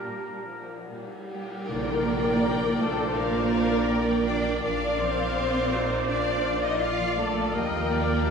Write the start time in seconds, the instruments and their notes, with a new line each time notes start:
Already playing: harp A#2 D4 F4 D5, viola section G3, violin section D4, french horn section F4 D5, oboe A#4
0.07 cello section A#2, violin section A#3
0.48 viola section F3, violin section A#3
0.88 cello section A#2, viola section G3, violin section A#3
1.29 cello section G3, violin section A#3 G4, flute section G4
1.68 double bass section A#1, harp A#2, cello section A#3, french horn section D4 F4, flute section A#4, viola section A#4 D5, violin section A#4 G5, clarinet A#4, oboe D5, tam-tam
1.88 harp F3
2.07 harp D4
2.25 harp F4
2.43 viola section A#4
2.62 harp D5
2.80 cello section A3, violin section A4, flute section A4, viola section C5, harp F5
3.00 harp D6
3.16 cello section A#3, violin section A#4 F5, flute section A#4, viola section D5, harp F5
3.52 violin section F5, harp F5
3.72 harp D5
3.88 harp F4, viola section A#4, violin section G5
4.09 harp F3
4.26 cello section D4, harp D4, violin section D5, flute section D5
4.46 harp F3
4.62 double bass section A#1, harp A#2, cello section D4, french horn section F4 D5, viola section A#4 D5, clarinet A#4, violin section D5 F5, flute section D5, oboe D5
4.83 harp D4
4.99 harp F3, cello section C4, violin section C5, flute section C5
5.21 harp F4
5.37 viola section C5 D5
5.73 viola section D#4, harp F5
6.08 cello section D4, violin section D5 F5, flute section D5, viola section D5, harp F5
6.45 harp F5
6.63 cello section D#4, harp D5, flute section D#5, violin section D#5
6.80 viola section F4 D5, harp F4, cello section F4, violin section F5, flute section F5
7.00 harp F3
7.17 cello section A3, harp D4, flute section A4, violin section A4
7.36 harp F3
7.52 double bass section D#2, harp D#3, french horn section G3 F4, cello section A#3, clarinet G4, flute section A#4, viola section A#4 D#5, violin section A#4 G5, oboe F5
7.91 harp G3, viola section D5
8.09 harp F4
8.27 viola section G4 D#5, violin section A5